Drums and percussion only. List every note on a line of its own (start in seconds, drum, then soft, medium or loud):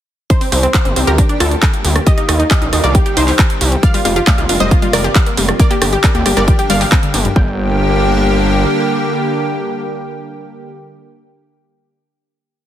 0.30 kick loud
0.30 closed hi-hat loud
0.41 open hi-hat medium
0.52 open hi-hat loud
0.63 closed hi-hat medium
0.74 kick loud
0.74 clap loud
0.74 closed hi-hat loud
0.85 closed hi-hat medium
0.96 open hi-hat loud
1.07 closed hi-hat medium
1.18 kick loud
1.18 closed hi-hat loud
1.29 closed hi-hat medium
1.40 cross-stick medium
1.40 open hi-hat loud
1.51 closed hi-hat medium
1.62 kick loud
1.62 clap loud
1.62 closed hi-hat loud
1.74 closed hi-hat medium
1.85 open hi-hat loud
1.96 cross-stick medium
1.96 closed hi-hat medium
2.07 kick loud
2.07 closed hi-hat loud
2.18 closed hi-hat medium
2.29 cross-stick medium
2.29 open hi-hat loud
2.40 closed hi-hat medium
2.51 kick loud
2.51 clap loud
2.51 closed hi-hat loud
2.62 closed hi-hat medium
2.73 cross-stick medium
2.73 open hi-hat loud
2.84 closed hi-hat medium
2.95 kick loud
2.95 closed hi-hat medium
3.06 closed hi-hat medium
3.17 open hi-hat loud
3.28 clap soft
3.28 open hi-hat medium
3.39 kick loud
3.39 clap loud
3.39 closed hi-hat loud
3.50 closed hi-hat medium
3.61 open hi-hat loud
3.72 closed hi-hat medium
3.83 kick loud
3.83 closed hi-hat medium
3.94 open hi-hat medium
4.05 open hi-hat loud
4.16 closed hi-hat medium
4.27 kick loud
4.27 clap loud
4.27 closed hi-hat medium
4.38 closed hi-hat medium
4.49 open hi-hat loud
4.60 closed hi-hat medium
4.71 kick loud
4.71 closed hi-hat medium
4.82 closed hi-hat soft
4.93 cross-stick medium
4.93 open hi-hat loud
5.04 closed hi-hat medium
5.15 kick loud
5.15 clap loud
5.15 closed hi-hat loud
5.26 closed hi-hat medium
5.37 open hi-hat loud
5.49 cross-stick medium
5.49 closed hi-hat medium
5.60 kick loud
5.60 closed hi-hat medium
5.71 closed hi-hat medium
5.82 cross-stick medium
5.82 open hi-hat loud
5.93 closed hi-hat soft
6.04 kick loud
6.04 clap loud
6.04 closed hi-hat medium
6.15 closed hi-hat medium
6.26 cross-stick medium
6.26 open hi-hat loud
6.37 closed hi-hat medium
6.48 kick loud
6.48 closed hi-hat medium
6.59 closed hi-hat medium
6.70 open hi-hat loud
6.81 clap soft
6.81 open hi-hat medium
6.92 kick loud
6.92 clap loud
6.92 closed hi-hat medium
7.03 closed hi-hat medium
7.14 open hi-hat loud
7.25 closed hi-hat medium
7.36 kick loud